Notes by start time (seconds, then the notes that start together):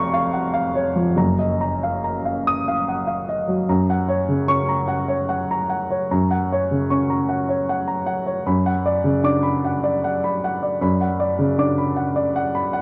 Already playing: F1 F2 C#5 F5 A#5 C#6
0.14 F5
0.33 F#5
0.54 F5
0.75 C#5
0.96 F3
1.16 F#1 F#2 A#5
1.39 D#5
1.61 A#5
1.83 F5
2.04 A#5
2.25 F5
2.47 D#6
2.68 F5
2.88 F#5
3.07 F5
3.29 D#5
3.48 F#3
3.69 F#2 A#5
3.90 F#5
4.08 C#5
4.29 C#3
4.48 C#4 C#6
4.69 A#5
4.88 F#5
5.08 C#5
5.29 F#5
5.51 A#5
5.70 F#5
5.91 C#5
6.11 F#2 A#5
6.31 F#5
6.52 C#5
6.71 C#3
6.90 C#4 C#6
7.10 A#5
7.29 F#5
7.49 C#5
7.69 F#5
7.88 A#5
8.06 F#5
8.26 C#5
8.46 F#2 B5
8.66 F#5
8.86 D5
9.04 C#3
9.24 D4 D6
9.43 B5
9.65 F#5
9.84 D5
10.04 F#5
10.24 B5
10.44 F#5
10.63 D5
10.81 F#2 B5
11.01 F#5
11.20 D5
11.39 C#3
11.59 D4 D6
11.78 B5
11.96 F#5
12.16 D5
12.36 F#5
12.55 B5
12.73 F#5